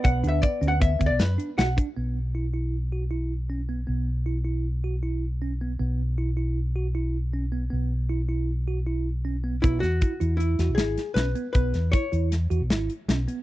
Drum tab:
HH |xxxxxxxxxx|----------|----------|----------|
SD |------o-o-|----------|----------|----------|
BD |o-o-oo---o|----------|----------|----------|

HH |----------|xxxxxxxxxx|xxxxxxxxxx|
SD |----------|-o---oooo-|-o--o-o-o-|
BD |----------|o-o-------|o-o-------|